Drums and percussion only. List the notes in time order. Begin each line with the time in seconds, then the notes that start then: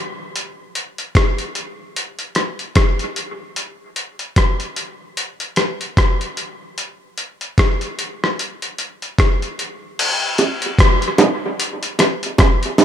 0.36 closed hi-hat
0.75 closed hi-hat
0.98 closed hi-hat
1.15 kick, cross-stick, closed hi-hat
1.38 closed hi-hat
1.55 closed hi-hat
1.96 closed hi-hat
2.19 closed hi-hat
2.35 cross-stick, closed hi-hat
2.59 closed hi-hat
2.75 kick, cross-stick, closed hi-hat
2.99 closed hi-hat
3.16 closed hi-hat
3.56 closed hi-hat
3.96 closed hi-hat
4.19 closed hi-hat
4.36 kick, cross-stick, closed hi-hat
4.60 closed hi-hat
4.76 closed hi-hat
5.17 closed hi-hat
5.40 closed hi-hat
5.56 cross-stick, closed hi-hat
5.81 closed hi-hat
5.97 kick, cross-stick, closed hi-hat
6.21 closed hi-hat
6.37 closed hi-hat
6.78 closed hi-hat
7.18 closed hi-hat
7.41 closed hi-hat
7.58 kick, cross-stick, closed hi-hat
7.81 closed hi-hat
7.99 closed hi-hat
8.24 cross-stick
8.39 closed hi-hat
8.62 closed hi-hat
8.78 closed hi-hat
9.02 closed hi-hat
9.18 kick, cross-stick, closed hi-hat
9.42 closed hi-hat
9.59 closed hi-hat
9.99 closed hi-hat, crash
10.38 closed hi-hat, high bongo
10.62 closed hi-hat
10.79 kick, cross-stick, closed hi-hat
11.02 closed hi-hat
11.18 closed hi-hat, high bongo, low bongo
11.60 closed hi-hat
11.83 closed hi-hat
11.99 cross-stick, closed hi-hat, high bongo
12.23 closed hi-hat
12.38 kick, cross-stick, closed hi-hat, high bongo
12.63 closed hi-hat
12.78 closed hi-hat, high bongo, low bongo